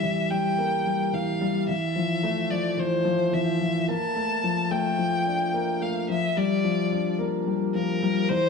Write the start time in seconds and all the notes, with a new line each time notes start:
Already playing: G3 E5
0.03 E3
0.31 G3 G5
0.58 A#3
0.86 G3
1.13 E3 F5
1.41 G3
1.69 E3 E5
1.96 F3
2.23 A3
2.51 F3 D5
2.78 E3 C5
3.05 F3
3.33 E3 E5
3.61 F3
3.88 A#3 A5
4.16 A3
4.43 F3
4.71 A3 G5
4.99 F3
5.26 D4
5.54 A#3
5.81 A3 F5
6.09 F3 E5
6.37 G3 D5
6.64 F3
6.92 D4
7.19 A#3
7.47 G3
7.75 F3 A#4
8.02 G3
8.29 E3 C5